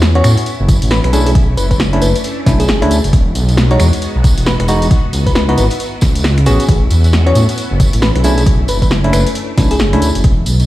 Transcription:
Already playing: detuned saw bass E2, string machine B3 C#4 E4 F#4
0.02 snare, tambourine
0.15 tine electric piano B3 C#4 F#4, fm electric piano C#5, closed hi-hat
0.24 detuned saw bass A2, finger snap, open hi-hat, tambourine
0.37 closed hi-hat, tambourine
0.46 closed hi-hat, tambourine
0.60 detuned saw bass F#1
0.69 kick, open hi-hat, tambourine
0.82 detuned saw bass A1, closed hi-hat, tambourine
0.91 fm electric piano B4, snare, tambourine
1.04 detuned saw bass B1, fm electric piano B4, finger snap, closed hi-hat
1.13 tine electric piano A3 C#4 D4 E4, string machine A3 D4, fm electric piano G#4, open hi-hat, tambourine
1.26 fm electric piano G#4, closed hi-hat, tambourine
1.35 kick, closed hi-hat, tambourine
1.57 detuned saw bass F#1, fm electric piano B4, open hi-hat, tambourine
1.71 fm electric piano B4, kick, closed hi-hat, tambourine
1.80 snare, tambourine
1.93 tine electric piano A3 C#4 D4 E4, closed hi-hat
2.02 detuned saw bass F#1, fm electric piano B4, open hi-hat, tambourine
2.15 closed hi-hat, tambourine
2.24 closed hi-hat, tambourine
2.46 detuned saw bass B1, tine electric piano A3 C#4 D4 E4, kick, snare, open hi-hat, tambourine
2.60 fm electric piano G#4, closed hi-hat, tambourine
2.68 detuned saw bass F#1, snare, tambourine
2.82 detuned saw bass D2, tine electric piano A3 C#4 D4 E4, finger snap, closed hi-hat
2.91 open hi-hat, tambourine
3.04 detuned saw bass F#1, closed hi-hat, tambourine
3.13 detuned saw bass E1, string machine G#3 B3 D#4 F#4, kick, closed hi-hat
3.35 detuned saw bass B1, open hi-hat, tambourine
3.49 closed hi-hat, tambourine
3.57 snare, tambourine
3.71 tine electric piano G#3 D#4 F#4, fm electric piano C#5, closed hi-hat
3.79 detuned saw bass E2, finger snap, open hi-hat, tambourine
3.93 closed hi-hat, tambourine
4.02 closed hi-hat, tambourine
4.15 detuned saw bass B1
4.24 kick, open hi-hat, tambourine
4.38 detuned saw bass E1, closed hi-hat, tambourine
4.46 fm electric piano B4, snare, tambourine
4.60 detuned saw bass E1, fm electric piano B4, finger snap, closed hi-hat
4.68 tine electric piano G#3 D#4 F#4, open hi-hat, tambourine
4.82 closed hi-hat, tambourine
4.91 string machine E4, kick, closed hi-hat, tambourine
5.13 detuned saw bass C#2, open hi-hat, tambourine
5.26 fm electric piano B4, kick, closed hi-hat, tambourine
5.35 fm electric piano B4, snare, tambourine
5.49 tine electric piano B3 D#4 E4 F#4, fm electric piano B4, closed hi-hat
5.57 detuned saw bass G#1, fm electric piano B4, open hi-hat, tambourine
5.70 closed hi-hat, tambourine
5.80 closed hi-hat, tambourine
6.01 detuned saw bass C#2, kick, snare, open hi-hat, tambourine
6.15 closed hi-hat, tambourine
6.24 snare, tambourine
6.38 finger snap, closed hi-hat
6.46 detuned saw bass A1, tine electric piano B3 C#4 F#4, string machine B3 C#4 F#4, fm electric piano G#4, open hi-hat, tambourine
6.60 closed hi-hat, tambourine
6.69 detuned saw bass A1, kick, closed hi-hat, tambourine
6.90 detuned saw bass E2, open hi-hat, tambourine
7.04 closed hi-hat, tambourine
7.13 snare, tambourine
7.26 tine electric piano B3 C#4 F#4, fm electric piano C#5, closed hi-hat
7.35 detuned saw bass A2, open hi-hat, tambourine
7.49 closed hi-hat, tambourine
7.58 closed hi-hat, tambourine
7.71 detuned saw bass F#1
7.80 kick, open hi-hat, tambourine
7.93 detuned saw bass A1, closed hi-hat, tambourine
8.02 fm electric piano B4, snare, tambourine
8.15 detuned saw bass B1, fm electric piano B4, finger snap, closed hi-hat
8.24 tine electric piano A3 C#4 D4 E4, string machine A3 D4, fm electric piano G#4, open hi-hat, tambourine
8.38 fm electric piano G#4, closed hi-hat, tambourine
8.46 kick, closed hi-hat, tambourine
8.68 detuned saw bass F#1, fm electric piano B4, open hi-hat, tambourine
8.82 fm electric piano B4, kick, closed hi-hat, tambourine
8.91 snare, tambourine
9.04 tine electric piano A3 C#4 D4 E4, closed hi-hat
9.13 detuned saw bass F#1, fm electric piano B4, finger snap, open hi-hat, tambourine
9.27 closed hi-hat, tambourine
9.35 closed hi-hat, tambourine
9.57 detuned saw bass B1, tine electric piano A3 C#4 D4 E4, kick, snare, open hi-hat, tambourine
9.71 fm electric piano G#4, closed hi-hat, tambourine
9.79 detuned saw bass F#1, snare, tambourine
9.93 detuned saw bass D2, tine electric piano A3 C#4 D4 E4, finger snap, closed hi-hat
10.02 open hi-hat, tambourine
10.15 detuned saw bass F#1, closed hi-hat, tambourine
10.24 detuned saw bass E1, string machine G#3 B3 D#4 F#4, kick, closed hi-hat, tambourine
10.46 detuned saw bass B1, open hi-hat, tambourine
10.60 closed hi-hat, tambourine

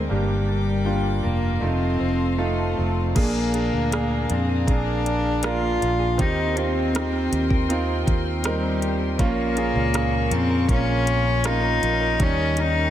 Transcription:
Already playing: clean electric guitar G#3 C4 D#4 A#4, grand piano A#3 C4 G#4, string section A#4
0.09 fingered electric bass G1, grand piano G2 A#3 D4 G4, clean electric guitar G2, cello G3, string section D5 G5
0.13 string section D6
0.48 clean electric guitar D4
0.85 grand piano A#3 D4 F4, clean electric guitar G4
1.23 fingered electric bass F1, clean electric guitar A#3, cello A#3
1.61 fingered electric bass F1, clean electric guitar F3, grand piano A3 D#4 F4, cello C4, string section A4 D#5 F5 C6
2.00 fingered electric bass F1, clean electric guitar C4
2.38 grand piano A3 D#4 F4, clean electric guitar A4
2.43 cello A3
2.77 fingered electric bass F1, clean electric guitar C4
3.15 fingered electric bass A#1, clean electric guitar A#2 G#4, grand piano A#2 A#3 D4 G#4, cello A#3, string section G#4 D5 F5 A#5, kick, closed hi-hat, crash
3.35 clean electric guitar A#3
3.53 grand piano A#3 D4 G#4, clean electric guitar D4, closed hi-hat
3.73 fingered electric bass D2, clean electric guitar A#3
3.91 grand piano A#3 D4 G#4, clean electric guitar G#4, cross-stick, closed hi-hat
4.11 clean electric guitar A#3
4.30 fingered electric bass F2, cello C4, clean electric guitar D4, closed hi-hat
4.49 clean electric guitar G#4
4.67 fingered electric bass A#1, clean electric guitar A#2 G#4, grand piano A#3 D4 G#4, cello D4, kick, closed hi-hat
4.87 clean electric guitar A#3
5.05 clean electric guitar D4, closed hi-hat
5.24 clean electric guitar A#3
5.43 grand piano A#3 D4 A#4, cello F4, clean electric guitar G#4, cross-stick, closed hi-hat
5.62 clean electric guitar A#3
5.81 fingered electric bass A#1, clean electric guitar D4, closed hi-hat
5.99 clean electric guitar G#4
6.18 fingered electric bass D#2, clean electric guitar D#3 A#4, grand piano D#3 C4 D#4 G4, cello D#4, string section A#4 D#5 G5 C6, kick, closed hi-hat
6.37 clean electric guitar C4
6.56 grand piano C4 D#4 F4, cello C4, clean electric guitar G4, closed hi-hat
6.75 clean electric guitar C4
6.93 grand piano C4 D#4 G4, clean electric guitar A#4, cross-stick, closed hi-hat
7.12 clean electric guitar C4
7.31 fingered electric bass D#2, clean electric guitar G4, closed hi-hat
7.50 clean electric guitar A#4, kick
7.68 clean electric guitar D#3 A#4, grand piano C4 D#4 F4, closed hi-hat
7.87 clean electric guitar C4
8.05 fingered electric bass D#2, clean electric guitar G4, kick, closed hi-hat
8.24 clean electric guitar C4
8.43 cello G3, grand piano C4 D#4 A#4, clean electric guitar A#4, cross-stick, closed hi-hat
8.62 clean electric guitar C4
8.81 clean electric guitar G4, closed hi-hat
9.00 clean electric guitar A#4
9.18 fingered electric bass A#1, clean electric guitar A#2 A#4, grand piano A#2 A#3 C#4 F4, string section A#4 F5 C#6, kick, closed hi-hat
9.23 cello A#3
9.37 clean electric guitar C#4
9.56 grand piano A#3 C#4 G#4, clean electric guitar F4, closed hi-hat
9.75 fingered electric bass C#2, clean electric guitar C#4
9.94 grand piano C#3 A#3 G#4, clean electric guitar A#4, cross-stick, closed hi-hat
10.31 fingered electric bass F2, cello C4, clean electric guitar F4, closed hi-hat
10.50 clean electric guitar A#4
10.68 fingered electric bass A#1, clean electric guitar A#2 A#4, grand piano A#3 C#4 F4, cello C#4, kick, closed hi-hat
10.88 clean electric guitar C#4
11.07 clean electric guitar F4, closed hi-hat
11.25 clean electric guitar C#4
11.44 grand piano A#3 C#4 F4, cello D#4, clean electric guitar A#4, cross-stick, closed hi-hat
11.63 clean electric guitar C#4
11.82 fingered electric bass A#1, clean electric guitar F4, closed hi-hat
12.01 clean electric guitar A#4
12.19 fingered electric bass D#2, clean electric guitar D#3 A#4, grand piano D#3 G3 C#4 D#4, cello C#4, string section D#5 G5, kick, closed hi-hat
12.38 clean electric guitar C#4
12.57 grand piano G3 C#4 D#4, cello D#4, clean electric guitar G4, closed hi-hat
12.76 clean electric guitar C#4

